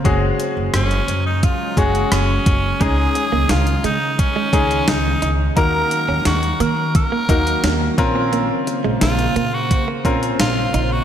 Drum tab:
HH |x-x-xxx-x-xxx-x-|x-x-xxx-x-xxx-x-|x-x-xxx-x-xxx-x-|x-x-xxx-x-xxx-x-|
SD |----r-------r---|----o-------o---|----o-------o---|----o-------o---|
BD |o-------o-o---o-|o-------o-o-----|o-------o-o---o-|--------o-o-----|